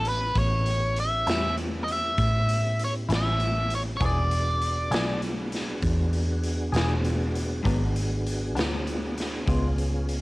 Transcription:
Already playing: fingered electric bass A1, tonewheel organ B3 C#4 E4 G4
0.05 overdriven electric guitar B4, closed hi-hat
0.35 fingered electric bass A1, tonewheel organ B3 C#4 E4 G4, overdriven electric guitar C#5, kick, closed hi-hat
0.66 closed hi-hat
0.96 overdriven electric guitar E5, closed hi-hat
1.27 fingered electric bass E2, clean electric guitar A2 G3 C#4 E4, snare, closed hi-hat
1.57 closed hi-hat
1.84 overdriven electric guitar D#5, closed hi-hat
1.92 overdriven electric guitar E5
2.18 fingered electric bass A2, kick, closed hi-hat
2.49 closed hi-hat
2.79 closed hi-hat
2.84 overdriven electric guitar C#5
3.09 fingered electric bass A1, clean electric guitar A2 G3 C#4 E4, snare, closed hi-hat
3.15 overdriven electric guitar E5
3.40 closed hi-hat
3.70 closed hi-hat
3.75 overdriven electric guitar C#5
3.97 fingered electric bass E1, clean electric guitar E3 B3, overdriven electric guitar C#5, kick, closed hi-hat
4.01 tonewheel organ B3 D4 F#4 G#4, clean electric guitar D4 G#4
4.05 overdriven electric guitar D5
4.31 closed hi-hat
4.61 closed hi-hat
4.90 fingered electric bass B1, clean electric guitar E3 B3 D4 G#4, snare, closed hi-hat
5.22 closed hi-hat
5.52 snare, closed hi-hat
5.82 fingered electric bass E2, kick, closed hi-hat
6.13 closed hi-hat
6.44 closed hi-hat
6.72 fingered electric bass E1, clean electric guitar E3 B3 D4 G#4, snare, closed hi-hat
7.05 closed hi-hat
7.35 closed hi-hat
7.63 fingered electric bass G#1, clean electric guitar G#2 F#3 B3 D4, tonewheel organ B3 D4 F#4 G#4, kick, closed hi-hat
7.96 closed hi-hat
8.27 closed hi-hat
8.55 fingered electric bass D2, clean electric guitar G#2 F#3 B3 D4, snare, closed hi-hat
8.87 closed hi-hat
9.18 snare, closed hi-hat
9.46 fingered electric bass C#2, clean electric guitar C#3 G#3 B3 F4, tonewheel organ B3 C#4 F4 G#4, kick, closed hi-hat
9.78 closed hi-hat
10.09 closed hi-hat

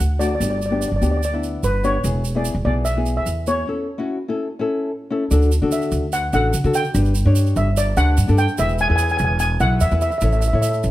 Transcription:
Already playing: steel pan F#5
0.00 upright bass D2, shaker
0.19 nylon-string guitar A3 D4 F#4, steel pan D5, shaker
0.27 steel pan D5
0.35 steel pan D5
0.40 upright bass G1, nylon-string guitar B3 D4 G4, steel pan D5, shaker
0.50 steel pan D5
0.58 steel pan D5, shaker
0.66 steel pan D5
0.71 nylon-string guitar B3 D4 G4, steel pan D5
0.80 steel pan D5, shaker
0.88 upright bass G1, steel pan D5
0.96 steel pan D5
1.01 upright bass D2, nylon-string guitar B3 D4 G4, steel pan D5, shaker
1.11 steel pan D5
1.17 steel pan D5
1.23 steel pan D5, shaker
1.33 nylon-string guitar B3 D4 E4
1.43 shaker
1.63 upright bass G1, steel pan B4, shaker
1.83 nylon-string guitar B3 D4 G4, steel pan C#5, shaker
2.03 upright bass E1, nylon-string guitar B3 E4 G#4, shaker
2.25 shaker
2.35 nylon-string guitar B3 E4 G#4, steel pan D5
2.45 shaker
2.55 upright bass E1
2.65 upright bass B1, nylon-string guitar B3 E4 G#4, steel pan D5
2.85 steel pan E5, shaker
2.96 nylon-string guitar B3 E4 G#4
3.06 shaker
3.17 steel pan E5
3.26 upright bass E2, shaker
3.47 nylon-string guitar B3 E4 G#4, steel pan C#5, shaker
3.67 nylon-string guitar C#4 E4 A4
3.98 nylon-string guitar C#4 E4 F#4
4.28 nylon-string guitar C#4 E4 A4
4.59 nylon-string guitar C#4 E4 A4
5.10 nylon-string guitar C#4 E4 A4
5.31 upright bass D2, nylon-string guitar D4 F#4 A4, shaker
5.42 shaker
5.52 shaker
5.62 upright bass D3, nylon-string guitar D4 F#4 A4
5.72 steel pan E5, shaker
5.82 shaker
5.92 upright bass D2, shaker
6.12 steel pan F#5, shaker
6.33 upright bass A1, nylon-string guitar D4 F#4 A4, steel pan F#5, shaker
6.53 upright bass D3, shaker
6.64 upright bass D3, nylon-string guitar D4 F#4 A4
6.74 steel pan G5, shaker
6.84 shaker
6.94 upright bass G1, nylon-string guitar D4 G4 B4, shaker
7.05 shaker
7.15 shaker
7.25 upright bass G2, nylon-string guitar D4 G4 C#5
7.35 shaker
7.46 shaker
7.56 upright bass G1, steel pan E5, shaker
7.77 steel pan D5, shaker
7.97 upright bass D2, nylon-string guitar D4 G4 B4, steel pan F#5, shaker
8.17 upright bass G2, shaker
8.27 upright bass G2, nylon-string guitar D4 G4 A4, shaker
8.38 steel pan G5, shaker
8.48 shaker
8.58 upright bass E1, nylon-string guitar E4 G#4 B4, steel pan E5, shaker
8.69 shaker
8.78 steel pan G#5, shaker
8.88 upright bass E2, nylon-string guitar E4 G#4 B4, steel pan G#5
8.96 steel pan G#5, shaker
9.03 steel pan G#5
9.09 steel pan G#5, shaker
9.17 upright bass E1, steel pan G#5, shaker
9.25 steel pan G#5
9.39 steel pan G#5, shaker
9.60 upright bass B1, nylon-string guitar E4 G#4 B4, steel pan F#5, shaker
9.80 upright bass E2, steel pan E5, shaker
9.91 upright bass E2, nylon-string guitar E4 G#4 B4, shaker
10.01 steel pan E5, shaker
10.11 steel pan E5, shaker
10.18 upright bass A1, steel pan E5, shaker
10.22 nylon-string guitar E4 A4 C#5, steel pan E5
10.32 steel pan E5, shaker
10.41 steel pan E5, shaker
10.48 steel pan E5
10.53 upright bass A2, nylon-string guitar E4 A4 C#5, steel pan E5
10.62 steel pan E5, shaker
10.69 steel pan E5, shaker
10.83 upright bass A1, shaker

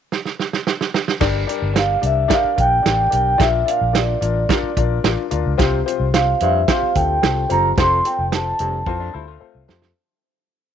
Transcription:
0.12 snare
0.25 snare
0.40 snare
0.53 snare
0.67 snare
0.81 snare
0.94 snare
1.08 snare
1.20 fingered electric bass G1, grand piano G2 D4 G4 A#4 D5, kick, snare, crash
1.47 grand piano D4 G4 A#4 D5, closed hi-hat
1.62 fingered electric bass G1
1.74 grand piano D4 G4 A#4 D5, snare, closed hi-hat
1.78 vibraphone F5
2.01 fingered electric bass C2, grand piano D4 G4 A#4 D5, closed hi-hat
2.06 vibraphone E5
2.28 grand piano D4 G4 A#4 D5, kick, snare, closed hi-hat
2.33 vibraphone F5
2.44 muted fingered electric bass stroke
2.56 fingered electric bass A#1, grand piano D4 G4 A#4 D5, kick, closed hi-hat
2.60 vibraphone G5
2.83 fingered electric bass A1, grand piano D4 G4 A#4 D5, snare, closed hi-hat
3.10 fingered electric bass B1, grand piano D4 G4 A#4 D5, vibraphone G5, closed hi-hat
3.38 fingered electric bass A#1, grand piano A#2 D4 F4 A#4 D5, vibraphone E5, kick, snare, closed hi-hat
3.66 grand piano D4 F4 A#4 D5, vibraphone F5, closed hi-hat
3.81 fingered electric bass A#1
3.93 grand piano D4 F4 A#4 D5, vibraphone D5, snare, closed hi-hat
4.21 fingered electric bass A1, grand piano D4 F4 A#4 D5, closed hi-hat
4.49 grand piano D4 F4 A#4 D5, kick, snare, closed hi-hat
4.63 muted fingered electric bass stroke
4.77 fingered electric bass A#1, grand piano D4 F4 A#4 D5, kick, closed hi-hat
5.04 fingered electric bass A1, grand piano D4 F4 A#4 D5, snare, closed hi-hat
5.31 fingered electric bass D2, grand piano D4 F4 A#4 D5, closed hi-hat
5.46 fingered electric bass C#2
5.58 fingered electric bass C2, grand piano C3 C4 F4 G4 C5, baritone saxophone C3, kick, snare, closed hi-hat
5.86 grand piano C4 F4 G4 C5, closed hi-hat
6.00 fingered electric bass C2
6.14 grand piano C4 F4 G4 C5, vibraphone F5, snare, closed hi-hat
6.34 vibraphone F5
6.40 fingered electric bass F2, baritone saxophone G2, grand piano C4 F4 G4 C5, vibraphone E5, closed hi-hat
6.68 grand piano C4 F4 G4 C5, vibraphone F5, kick, snare, closed hi-hat
6.83 muted fingered electric bass stroke
6.95 fingered electric bass D2, grand piano C4 F4 G4 A4, vibraphone G5, kick, closed hi-hat
7.22 fingered electric bass C2, grand piano C4 F4 G4 A4, snare, closed hi-hat
7.49 fingered electric bass F#1, baritone saxophone F2, grand piano C4 F4 G4 C5, vibraphone A#5, closed hi-hat
7.77 fingered electric bass F1, baritone saxophone F2, grand piano C4 F4 A4 C5, vibraphone C6, kick, snare, closed hi-hat
8.05 grand piano C4 F4 A4 C5, vibraphone G5, closed hi-hat
8.19 fingered electric bass F1
8.31 grand piano C4 F4 A4 C5, vibraphone A5, snare, closed hi-hat
8.59 fingered electric bass F1, baritone saxophone G2, grand piano C4 F4 A4 C5, closed hi-hat
8.86 fingered electric bass F2, clean electric guitar E3 C4, grand piano C4 F4 A4 C5, kick
9.00 clean electric guitar F3 D4
9.14 fingered electric bass D2, clean electric guitar G3 E4, grand piano C4 F4 A4 C5
9.28 clean electric guitar A3 F4
9.40 grand piano C4 F4 A4 C5, muted fingered electric bass stroke
9.55 fingered electric bass C2
9.68 fingered electric bass F2, baritone saxophone F2, grand piano C4 F4 A4 C5, snare
9.82 snare

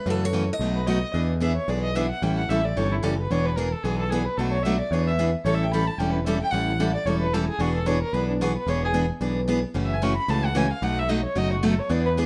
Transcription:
0.06 picked electric bass F#2, steel-string acoustic guitar C#3 E3 A3 C#4 F#4
0.10 steel-string acoustic guitar A4
0.25 steel-string acoustic guitar C#5
0.33 steel-string acoustic guitar C#3 E3 A3 C#4 F#4
0.53 steel-string acoustic guitar D#5
0.59 picked electric bass B1, steel-string acoustic guitar B2 F#3 A3 D#4 F#4
0.75 violin B4
0.87 steel-string acoustic guitar B2 F#3 A3 D#4 F#4, violin D#5
1.14 picked electric bass E2, steel-string acoustic guitar E3 B3 D4 G#4
1.40 steel-string acoustic guitar E3 B3 D4 G#4, violin E5
1.56 violin C#5
1.68 picked electric bass B1, steel-string acoustic guitar E3 B3 D4 G#4, violin D5
1.84 violin D#5
1.95 steel-string acoustic guitar E3 B3 D4 G#4, violin E5
2.09 violin F#5
2.22 picked electric bass A1, steel-string acoustic guitar E3 G3 C#4 E4 A4, violin G5
2.37 violin F#5
2.49 picked electric bass A1, steel-string acoustic guitar E3 G3 C#4 E4 A4, violin E5
2.65 violin D5
2.76 picked electric bass G1, steel-string acoustic guitar E3 G3 C#4 E4 A4, violin C#5
2.91 violin E4
3.03 picked electric bass F#1, steel-string acoustic guitar E3 G3 C#4 E4 A4, violin G4
3.18 violin B4
3.30 picked electric bass E1, steel-string acoustic guitar E3 B3 D4 G#4, violin C#5
3.45 violin B4
3.56 steel-string acoustic guitar E3 B3 D4 G#4, violin A#4
3.72 violin A4
3.83 picked electric bass B1, steel-string acoustic guitar E3 B3 D4 G#4, violin G#4
3.99 violin A4
4.10 steel-string acoustic guitar E3 B3 D4 G#4, violin G#4
4.25 violin B4
4.37 picked electric bass B1, steel-string acoustic guitar B2 F#3 A3 D4 F#4, violin A4
4.52 violin C#5
4.63 steel-string acoustic guitar B2 F#3 A3 D4 F#4, violin E5
4.79 violin D5
4.91 picked electric bass E2, steel-string acoustic guitar E3 B3 D4 G#4, violin C#5
5.07 violin E5
5.19 steel-string acoustic guitar E3 B3 D4 G#4
5.45 picked electric bass A1, steel-string acoustic guitar E3 G3 C#4 E4 A4, violin C#5
5.54 violin E5
5.63 violin G5
5.72 steel-string acoustic guitar E3 G3 C#4 E4 A4, violin B5
5.87 violin A5
5.98 picked electric bass E1, steel-string acoustic guitar E3 G3 C#4 E4 A4, violin G5
6.13 violin B4
6.25 steel-string acoustic guitar E3 G3 C#4 E4 A4, violin E5
6.40 violin G5
6.51 picked electric bass A1, steel-string acoustic guitar E3 G3 C#4 E4 A4, violin F#5
6.80 steel-string acoustic guitar E3 G3 C#4 E4 A4
6.95 violin D5
7.06 picked electric bass E1, steel-string acoustic guitar E3 G3 C#4 E4 A4, violin C#5
7.21 violin B4
7.33 steel-string acoustic guitar E3 G3 C#4 E4 A4, violin A4
7.48 violin G#4
7.59 picked electric bass E1, steel-string acoustic guitar E3 B3 D4 G#4, violin F#4
7.75 violin A4
7.86 steel-string acoustic guitar E3 B3 D4 G#4, violin C#5
8.02 violin A#4
8.13 picked electric bass B1, steel-string acoustic guitar E3 B3 D4 G#4, violin B4
8.29 violin D4
8.41 steel-string acoustic guitar E3 B3 D4 G#4, violin F#4
8.56 violin B4
8.67 picked electric bass E1, steel-string acoustic guitar E3 B3 D4 G#4, violin C#5
8.84 violin G#4
8.94 steel-string acoustic guitar E3 B3 D4 G#4
9.21 picked electric bass B1, steel-string acoustic guitar E3 B3 D4 G#4
9.48 steel-string acoustic guitar E3 B3 D4 G#4
9.74 picked electric bass F#1, steel-string acoustic guitar C#3 E3 A3 C#4 F#4
9.85 violin E5
9.94 violin G#5
10.02 steel-string acoustic guitar C#3 E3 A3 C#4 F#4, violin C#6
10.17 violin B5
10.28 picked electric bass C#2, steel-string acoustic guitar C#3 E3 A3 C#4 F#4, violin A5
10.45 violin F#5
10.55 steel-string acoustic guitar C#3 E3 A3 C#4 F#4, violin G#5
10.72 violin F5
10.82 picked electric bass B1, steel-string acoustic guitar B2 F#3 A3 D#4 F#4, violin F#5
10.99 violin E5
11.09 steel-string acoustic guitar B2 F#3 A3 D#4 F#4, violin D#5
11.25 violin C#5
11.35 picked electric bass F#1, steel-string acoustic guitar B2 F#3 A3 D#4 F#4, violin D#5
11.53 violin F#4
11.63 steel-string acoustic guitar B2 F#3 A3 D#4 F#4, violin A4
11.79 violin C#5
11.89 picked electric bass E2, steel-string acoustic guitar E3 B3 D4 G#4, violin D5
12.05 violin B4
12.17 steel-string acoustic guitar E3 B3 D4 G#4

